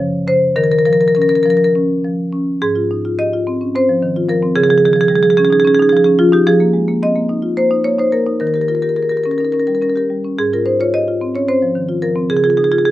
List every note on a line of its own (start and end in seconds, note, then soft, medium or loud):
0.00 0.54 F#2 medium
0.00 0.17 C#3 medium
0.00 0.46 F3 medium
0.00 0.27 C#5 loud
0.28 0.58 C#3 medium
0.28 0.56 C5 medium
0.56 2.56 D#3 medium
0.56 0.64 A#4 loud
0.64 0.72 A#4 medium
0.72 0.79 A#4 medium
0.79 0.85 A#4 medium
0.85 1.33 F3 medium
0.85 0.93 A#4 medium
0.93 1.01 A#4 medium
1.01 1.08 A#4 medium
1.08 1.15 A#4 medium
1.15 1.63 C#4 medium
1.15 1.22 A#4 medium
1.22 1.29 A#4 medium
1.29 1.35 A#4 medium
1.35 1.43 A#4 medium
1.43 1.92 F3 medium
1.43 1.50 A#4 medium
1.50 1.57 A#4 medium
1.57 1.64 A#4 medium
1.64 1.70 A#4 medium
1.75 2.21 C#4 medium
2.05 2.50 F3 medium
2.32 2.61 C#4 soft
2.62 4.51 G#2 medium
2.62 3.15 G#4 medium
2.75 2.98 F4 soft
2.91 3.04 D#4 soft
3.05 3.27 F4 soft
3.19 3.32 G4 soft
3.19 3.71 D#5 medium
3.33 3.55 F4 soft
3.47 3.68 C4 medium
3.61 3.74 C#4 soft
3.75 3.96 C4 medium
3.75 4.27 C5 medium
3.89 4.10 F3 medium
4.02 4.23 D#3 medium
4.16 4.37 F4 medium
4.29 4.50 F3 medium
4.29 4.55 A#4 medium
4.43 4.56 C4 medium
4.56 6.42 C#3 medium
4.56 4.64 G#4 loud
4.64 4.70 G#4 medium
4.69 4.90 F3 soft
4.69 4.78 G#4 medium
4.78 4.85 G#4 medium
4.85 4.97 D#3 soft
4.85 4.93 G#4 medium
4.93 5.18 F3 medium
4.93 5.01 G#4 medium
5.01 5.08 G#4 medium
5.08 5.23 G3 soft
5.08 5.16 G#4 medium
5.16 5.23 G#4 medium
5.23 5.45 F3 medium
5.23 5.30 G#4 medium
5.30 5.37 G#4 medium
5.37 5.59 C#4 medium
5.37 5.45 G#4 medium
5.45 5.53 G#4 medium
5.50 5.64 D#4 medium
5.50 5.60 G#4 medium
5.60 5.67 G#4 medium
5.65 5.86 C#4 medium
5.65 5.75 G#4 medium
5.75 5.82 G#4 medium
5.80 6.00 D#4 medium
5.80 5.89 G#4 medium
5.89 6.14 F3 medium
5.89 5.97 G#4 medium
5.97 6.04 G#4 medium
6.04 6.27 C#4 medium
6.04 6.15 G#4 medium
6.19 6.41 F3 medium
6.19 6.32 F4 medium
6.32 6.46 D#4 medium
6.32 6.46 G4 medium
6.47 8.36 F3 medium
6.47 6.99 G#4 loud
6.60 6.82 A#3 medium
6.73 6.87 G#3 medium
6.88 7.09 A#3 medium
7.03 7.15 C4 soft
7.03 7.55 D#5 medium
7.16 7.37 A#3 medium
7.29 7.51 D#4 medium
7.42 7.56 F4 soft
7.57 7.79 A#3 medium
7.57 7.83 C5 medium
7.71 7.93 D#4 medium
7.84 8.07 A#3 soft
7.84 7.98 C#5 medium
7.99 8.20 D#4 soft
7.99 8.12 C5 medium
8.12 8.34 A#3 soft
8.12 8.39 A#4 medium
8.27 8.40 D#4 soft
8.40 10.34 D#3 medium
8.40 8.47 A#4 medium
8.47 8.54 A#4 medium
8.54 8.77 G4 soft
8.54 8.61 A#4 medium
8.61 8.68 A#4 medium
8.68 8.82 F4 soft
8.68 8.75 A#4 medium
8.75 8.82 A#4 medium
8.82 9.05 G4 soft
8.82 8.89 A#4 medium
8.89 8.96 A#4 medium
8.96 9.10 G#4 soft
8.96 9.03 A#4 medium
9.03 9.09 A#4 medium
9.09 9.33 G4 soft
9.09 9.17 A#4 medium
9.17 9.23 A#4 medium
9.23 9.47 C#4 soft
9.23 9.31 A#4 medium
9.31 9.38 A#4 medium
9.38 9.53 D#4 soft
9.38 9.45 A#4 medium
9.45 9.52 A#4 medium
9.52 9.76 C#4 soft
9.52 9.60 A#4 medium
9.60 9.67 A#4 medium
9.67 9.90 G3 soft
9.67 9.75 A#4 medium
9.75 9.82 A#4 medium
9.82 10.04 C#4 soft
9.82 9.90 A#4 medium
9.90 9.97 A#4 medium
9.96 10.18 G4 soft
9.96 10.05 A#4 medium
10.10 10.32 G3 soft
10.25 10.38 C#4 soft
10.39 12.28 G#2 medium
10.39 10.52 G#4 medium
10.53 10.74 F4 soft
10.53 10.66 A#4 medium
10.66 10.79 D#4 soft
10.66 10.79 C5 medium
10.80 11.01 F4 soft
10.80 10.93 C#5 medium
10.94 11.07 G4 soft
10.94 11.33 D#5 medium
11.08 11.29 F4 soft
11.21 11.43 C4 soft
11.35 11.48 C#4 soft
11.35 11.48 C#5 medium
11.48 11.70 C4 soft
11.48 12.01 C5 medium
11.62 11.84 F3 soft
11.75 11.98 D#3 soft
11.89 12.11 F4 soft
12.02 12.25 F3 soft
12.02 12.29 A#4 medium
12.16 12.30 C4 soft
12.30 12.91 C#3 medium
12.30 12.37 G#4 medium
12.37 12.44 G#4 medium
12.44 12.67 F4 soft
12.44 12.50 G#4 medium
12.50 12.57 G#4 medium
12.57 12.72 D#4 soft
12.57 12.64 G#4 medium
12.64 12.72 G#4 medium
12.72 12.91 F4 soft
12.72 12.78 G#4 medium
12.78 12.85 G#4 medium
12.85 12.91 G4 soft
12.85 12.91 G#4 medium